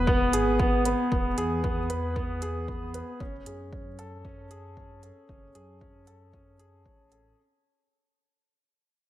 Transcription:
Already playing: detuned saw bass E1, grand piano B3 G#4 B4
0.07 grand piano B3, kick
0.33 detuned saw bass G#1, grand piano G#4, closed hi-hat
0.59 grand piano B3, kick
0.85 grand piano B4, closed hi-hat
1.12 detuned saw bass E1, grand piano B3, kick
1.38 detuned saw bass E2, grand piano G#4, closed hi-hat
1.64 grand piano B3, kick
1.90 grand piano B4, closed hi-hat
2.16 grand piano B3, kick
2.42 grand piano G#4, closed hi-hat
2.68 grand piano B3, kick
2.94 grand piano B4, closed hi-hat
3.20 detuned saw bass F#1, grand piano C#4, kick
3.46 detuned saw bass F#2, grand piano G#4, closed hi-hat
3.73 grand piano C#4, kick
3.99 grand piano A4, closed hi-hat
4.25 grand piano C#4, kick
4.51 grand piano G#4, closed hi-hat
4.77 grand piano C#4, kick
5.03 grand piano A4, closed hi-hat
5.29 detuned saw bass F#1, grand piano C#4, kick
5.55 detuned saw bass F#2, grand piano G#4, closed hi-hat
5.81 grand piano C#4, kick
6.07 grand piano A4, closed hi-hat
6.33 grand piano C#4, kick
6.59 grand piano G#4, closed hi-hat
6.86 detuned saw bass A1, grand piano C#5, kick
7.12 grand piano A4, closed hi-hat

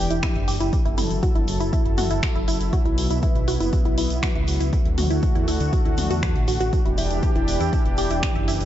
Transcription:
Already playing: analog synth pad E3 D4 G4
0.10 detuned saw bass E1, synth pluck E4, closed hi-hat, shaker
0.23 synth pluck E4, finger snap, kick, closed hi-hat, mid tom, shaker
0.36 detuned saw bass F#1, closed hi-hat
0.48 detuned saw bass F#1, synth pluck G4, open hi-hat, shaker
0.60 detuned saw bass F#1, synth pluck E4, closed hi-hat, shaker
0.73 analog synth pad F#3 E4 A4, kick, closed hi-hat, shaker
0.85 detuned saw bass F#1, synth pluck E4, closed hi-hat
0.98 detuned saw bass F#1, synth pluck E4, mid tom, open hi-hat, shaker
1.11 detuned saw bass F#1, closed hi-hat, shaker
1.23 synth pluck F#4, kick, closed hi-hat, shaker
1.35 detuned saw bass G1, synth pluck E4, closed hi-hat
1.48 detuned saw bass F#1, open hi-hat, shaker
1.60 detuned saw bass F#1, synth pluck E4, closed hi-hat, shaker
1.73 synth pluck E4, kick, closed hi-hat, shaker
1.85 detuned saw bass F#1, closed hi-hat
1.98 detuned saw bass F#1, synth pluck F#4, mid tom, open hi-hat, shaker
2.10 detuned saw bass F#1, synth pluck E4, closed hi-hat, shaker
2.23 finger snap, kick, closed hi-hat, shaker
2.35 detuned saw bass F#1, synth pluck E4, closed hi-hat
2.48 detuned saw bass F#1, synth pluck E4, open hi-hat, shaker
2.60 detuned saw bass F#1, closed hi-hat, shaker
2.73 analog synth pad B3, synth pluck F#4, kick, closed hi-hat, shaker
2.85 detuned saw bass B1, synth pluck E4, closed hi-hat
2.98 detuned saw bass B1, open hi-hat, shaker
3.10 detuned saw bass B1, synth pluck E4, closed hi-hat, shaker
3.22 synth pluck E4, kick, closed hi-hat, shaker
3.35 detuned saw bass B1, closed hi-hat
3.48 detuned saw bass B1, synth pluck F#4, open hi-hat, shaker
3.60 detuned saw bass F#1, synth pluck E4, closed hi-hat, shaker
3.73 kick, closed hi-hat, shaker
3.85 detuned saw bass B1, synth pluck E4, closed hi-hat
3.98 detuned saw bass B1, synth pluck E4, open hi-hat, shaker
4.10 detuned saw bass B1, closed hi-hat, shaker
4.23 synth pluck F#4, finger snap, kick, closed hi-hat, mid tom, shaker
4.35 detuned saw bass C#2, synth pluck E4, closed hi-hat
4.48 detuned saw bass C#2, open hi-hat, shaker
4.60 detuned saw bass C#2, synth pluck E4, closed hi-hat, shaker
4.73 analog synth pad D3 A3 F#4, synth pluck E4, kick, closed hi-hat, shaker
4.85 detuned saw bass D2, closed hi-hat
4.98 detuned saw bass D2, synth pluck F#4, mid tom, open hi-hat, shaker
5.10 detuned saw bass D2, synth pluck E4, closed hi-hat, shaker
5.22 kick, closed hi-hat, shaker
5.35 detuned saw bass E2, synth pluck E4, closed hi-hat
5.48 detuned saw bass D2, synth pluck E4, open hi-hat, shaker
5.60 detuned saw bass D2, closed hi-hat, shaker
5.73 synth pluck F#4, kick, closed hi-hat, shaker
5.85 detuned saw bass D2, synth pluck E4, closed hi-hat
5.98 detuned saw bass D2, mid tom, open hi-hat, shaker
6.10 detuned saw bass E2, synth pluck F#4, closed hi-hat, shaker
6.23 synth pluck F#4, finger snap, kick, closed hi-hat, shaker
6.35 detuned saw bass A1, closed hi-hat
6.48 detuned saw bass A1, synth pluck F#4, open hi-hat, shaker
6.60 detuned saw bass A1, synth pluck F#4, closed hi-hat, shaker
6.73 analog synth pad E3 D4 G4, kick, closed hi-hat, shaker
6.85 detuned saw bass E1, synth pluck E4, closed hi-hat
6.98 detuned saw bass E1, synth pluck E4, open hi-hat, shaker
7.10 detuned saw bass E1, closed hi-hat, shaker
7.23 synth pluck G4, kick, closed hi-hat, shaker
7.35 detuned saw bass E1, synth pluck E4, closed hi-hat
7.48 detuned saw bass E1, open hi-hat, shaker
7.60 detuned saw bass E2, synth pluck E4, closed hi-hat, shaker
7.73 synth pluck E4, kick, closed hi-hat, shaker
7.85 detuned saw bass E1, closed hi-hat
7.97 detuned saw bass E1, synth pluck G4, open hi-hat, shaker
8.10 detuned saw bass E1, synth pluck E4, closed hi-hat, shaker
8.23 finger snap, kick, closed hi-hat, mid tom, shaker
8.35 detuned saw bass F#1, synth pluck E4, closed hi-hat
8.48 detuned saw bass F#1, synth pluck E4, open hi-hat, shaker
8.60 detuned saw bass F#1, closed hi-hat, shaker

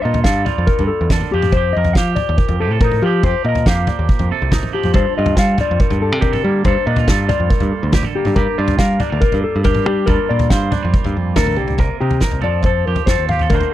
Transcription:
Already playing: clean electric guitar G2 A#3 A4
0.02 picked electric bass A#2, clean electric guitar F4 D#5
0.14 floor tom
0.24 picked electric bass G2, clean electric guitar A4 F5, kick, snare
0.45 clean electric guitar G3 F4 D5, floor tom, mid tom
0.58 picked electric bass F2
0.67 clean electric guitar A#4, kick
0.79 picked electric bass G2, floor tom
0.87 clean electric guitar A4
1.01 picked electric bass E2
1.10 clean electric guitar D3 A4 A#4, kick, snare, floor tom, mid tom
1.21 mid tom
1.32 picked electric bass F2, clean electric guitar F3 G4
1.42 mid tom
1.52 clean electric guitar C5, kick, floor tom
1.57 clean electric guitar G4
1.73 picked electric bass F2, clean electric guitar D#5
1.78 clean electric guitar A#4
1.85 floor tom
1.93 picked electric bass F3, clean electric guitar F5, kick, snare
1.98 clean electric guitar G4
2.16 clean electric guitar D5, floor tom, mid tom
2.29 picked electric bass D#2
2.38 clean electric guitar A#4, kick
2.49 picked electric bass F2, floor tom
2.60 clean electric guitar C3 G4 A4
2.70 picked electric bass A2, clean electric guitar A4
2.81 clean electric guitar D#4 A#4, kick, floor tom
2.91 mid tom
3.03 picked electric bass F3, clean electric guitar F3 G4
3.23 picked electric bass F2, clean electric guitar G4 C5, kick, floor tom
3.44 picked electric bass A#2, clean electric guitar D#5
3.49 clean electric guitar A#4
3.55 floor tom
3.66 picked electric bass F2, clean electric guitar A#3 G4 F5, kick, snare
3.87 clean electric guitar D5, floor tom, mid tom
3.99 picked electric bass D#2
4.09 clean electric guitar A#4, kick
4.19 picked electric bass F2, floor tom
4.30 clean electric guitar C3 A4
4.42 picked electric bass C2
4.51 clean electric guitar D#4 A#4, kick, snare, floor tom, mid tom
4.63 mid tom
4.73 clean electric guitar F3 G4
4.83 picked electric bass F2, mid tom
4.93 clean electric guitar G2 A4 C5, picked electric bass G2, kick, floor tom
5.18 picked electric bass G2, clean electric guitar F4 D#5
5.26 floor tom
5.37 picked electric bass G3, clean electric guitar A4 F5, kick, snare
5.58 clean electric guitar G3 F4 D5, floor tom, mid tom
5.71 picked electric bass F2
5.80 clean electric guitar A#4, kick
5.91 picked electric bass G2, floor tom
6.02 clean electric guitar A4
6.12 picked electric bass C3
6.21 clean electric guitar D3 G4 A#4, kick, floor tom
6.33 clean electric guitar A4, mid tom
6.43 picked electric bass G3, clean electric guitar A#3 G4
6.65 picked electric bass G2, clean electric guitar G2 A4 C5, kick, floor tom
6.86 picked electric bass A#2, clean electric guitar D4 D#5
6.96 clean electric guitar F4, floor tom
7.08 picked electric bass G2, clean electric guitar A4 F5, kick, snare
7.28 clean electric guitar G3 F4 D5, floor tom, mid tom
7.40 picked electric bass F2
7.50 clean electric guitar A#4, kick
7.60 picked electric bass G2, floor tom
7.72 clean electric guitar A4
7.83 picked electric bass D2
7.93 clean electric guitar D3 G4 A#4, kick, snare, floor tom, mid tom
8.03 clean electric guitar A4, mid tom
8.15 clean electric guitar A#3 G4
8.25 picked electric bass G2, mid tom
8.36 picked electric bass G2, clean electric guitar G2 G4 A#4, kick, floor tom
8.58 picked electric bass G2, clean electric guitar F4 D5
8.68 floor tom
8.79 picked electric bass G3, clean electric guitar A#4 F5, kick, snare
9.00 clean electric guitar G3 D4 D5, floor tom, mid tom
9.10 picked electric bass D2, clean electric guitar F4
9.21 clean electric guitar A#4, kick
9.32 picked electric bass G2, floor tom
9.44 clean electric guitar A4
9.56 picked electric bass G2
9.64 clean electric guitar G2 G4 A#4, kick, floor tom
9.75 mid tom
9.85 picked electric bass G3, clean electric guitar D4 G4
10.06 clean electric guitar G2 G3 A#3 F4 A4 A#4, picked electric bass G2, kick, floor tom
10.29 picked electric bass A#2, clean electric guitar F4 D5
10.39 floor tom
10.50 picked electric bass G2, clean electric guitar C5 F5, kick, snare
10.71 clean electric guitar G3 D4 D5, floor tom, mid tom
10.83 picked electric bass F2, clean electric guitar F4
10.94 clean electric guitar A#4, kick
11.04 picked electric bass G2, floor tom
11.14 picked electric bass F2, clean electric guitar A4
11.36 picked electric bass D2, clean electric guitar D3 A4 A#4, kick, snare, floor tom, mid tom
11.46 mid tom
11.56 picked electric bass C2, clean electric guitar A#3 G4, high tom
11.68 floor tom
11.78 picked electric bass C2, clean electric guitar C3 A#4, kick, floor tom
12.00 picked electric bass C3, clean electric guitar D#4 G4
12.11 floor tom
12.20 clean electric guitar A#4, kick, snare, mid tom
12.31 picked electric bass C2, floor tom
12.41 picked electric bass F2, clean electric guitar F3 A4 D5, floor tom
12.63 clean electric guitar A4 C5, kick, floor tom
12.85 picked electric bass F2, clean electric guitar G4 A#4
12.96 floor tom
13.06 picked electric bass F2, clean electric guitar C4 A4 C5, kick, snare
13.19 picked electric bass D#2
13.29 clean electric guitar G4 F5, mid tom
13.39 clean electric guitar A4, floor tom
13.50 picked electric bass D2, clean electric guitar D3 A#4, kick, floor tom
13.54 clean electric guitar A3 A#3 F#4 C5
13.61 floor tom

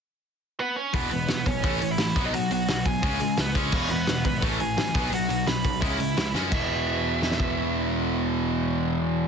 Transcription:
0.60 lead electric guitar B3 B4
0.76 lead electric guitar C#4 C#5
0.93 picked electric bass E1, distorted electric guitar E2 B2 E3, lead electric guitar B3 B4, kick, open hi-hat
1.11 picked electric bass E1, distorted electric guitar E2 B2, lead electric guitar B3 B4, open hi-hat
1.28 picked electric bass E1, distorted electric guitar E2 B2, snare, open hi-hat
1.46 picked electric bass B1, distorted electric guitar E2 B2, lead electric guitar C#4 C#5, kick, open hi-hat
1.64 picked electric bass A1, distorted electric guitar A2 E3 A3, kick, open hi-hat
1.81 picked electric bass A1, distorted electric guitar A2 E3, open hi-hat
1.91 lead electric guitar E4 E5
1.98 picked electric bass A1, distorted electric guitar A2 E3, snare, open hi-hat
2.16 picked electric bass B1, distorted electric guitar B2 F#3 B3, kick, open hi-hat
2.25 lead electric guitar D#4 D#5
2.33 picked electric bass B1, distorted electric guitar B2 F#3, lead electric guitar F#4 F#5, open hi-hat
2.50 picked electric bass B1, distorted electric guitar B2 F#3, lead electric guitar F#4 F#5, open hi-hat
2.68 picked electric bass B1, distorted electric guitar B2 F#3, snare, open hi-hat
2.85 picked electric bass B1, distorted electric guitar B2 F#3, lead electric guitar G#4 G#5, kick, open hi-hat
3.02 picked electric bass C#2, distorted electric guitar C#3 G#3 C#4, kick, open hi-hat
3.20 picked electric bass C#2, distorted electric guitar C#3 G#3, open hi-hat
3.37 picked electric bass C#2, distorted electric guitar C#3 G#3, lead electric guitar B3 B4, snare, open hi-hat
3.55 picked electric bass C#2, distorted electric guitar C#3 G#3 C#4, lead electric guitar C#4 C#5, kick, open hi-hat
3.72 picked electric bass E1, distorted electric guitar E2 B2 E3, kick, crash
3.90 picked electric bass E1, distorted electric guitar E2 B2, lead electric guitar B3 B4, open hi-hat
4.07 picked electric bass E1, distorted electric guitar E2 B2, snare, open hi-hat
4.25 picked electric bass G#1, distorted electric guitar E2 B2, lead electric guitar B3 B4, kick, open hi-hat
4.42 picked electric bass A1, distorted electric guitar A2 E3 A3, lead electric guitar C#4 C#5, kick, open hi-hat
4.60 picked electric bass A1, distorted electric guitar A2 E3, lead electric guitar G#4 G#5, open hi-hat
4.77 picked electric bass A1, distorted electric guitar A2 E3, snare, open hi-hat
4.94 picked electric bass B1, distorted electric guitar B2 F#3 B3, kick, open hi-hat
5.11 picked electric bass B1, distorted electric guitar B2 F#3, lead electric guitar F#4 F#5, open hi-hat
5.29 picked electric bass B1, distorted electric guitar B2 F#3, open hi-hat
5.47 picked electric bass B1, distorted electric guitar B2 F#3, lead electric guitar B4 B5, snare, open hi-hat
5.65 picked electric bass B1, distorted electric guitar B2 F#3, kick, open hi-hat
5.81 picked electric bass C#2, distorted electric guitar C#3 G#3 C#4, lead electric guitar E4 E5, kick, open hi-hat
5.99 picked electric bass C#2, distorted electric guitar C#3 G#3, open hi-hat
6.17 picked electric bass C#2, distorted electric guitar C#3 G#3, snare, open hi-hat
6.34 picked electric bass F#2, distorted electric guitar C#3 G#3 C#4, snare
6.51 picked electric bass E1, distorted electric guitar E2 B2, lead electric guitar E5, kick, crash
6.55 distorted electric guitar E3
7.22 snare
7.31 snare
7.40 kick

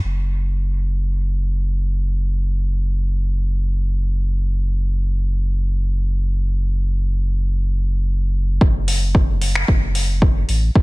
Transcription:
0.04 sub bass F#1
8.61 sub bass F#1, kick
8.88 open hi-hat
9.15 kick
9.42 open hi-hat
9.55 finger snap
9.68 sub bass F#1, kick
9.95 open hi-hat
10.22 kick
10.49 sub bass A1, open hi-hat
10.75 sub bass F#1, kick

